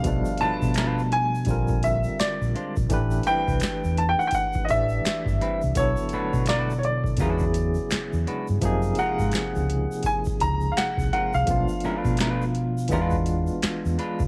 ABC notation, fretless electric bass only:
X:1
M:4/4
L:1/16
Q:"Swing 16ths" 1/4=84
K:Bphr
V:1 name="Fretless electric bass" clef=bass
B,,, z2 B,,4- B,, _B,,,4 z B,,, z B,,, | A,,,2 z C,, z E,,2 z3 A,,,2 z G,,, z C,, | B,,, z2 B,,4- B,, E,,4 z E,, z G,, | F,,2 z ^G,, z ^C,,2 z3 C,,2 z ^B,,, z B,,, |
B,,, z2 B,,4- B,, E,,4 z E,, z ^C,, |]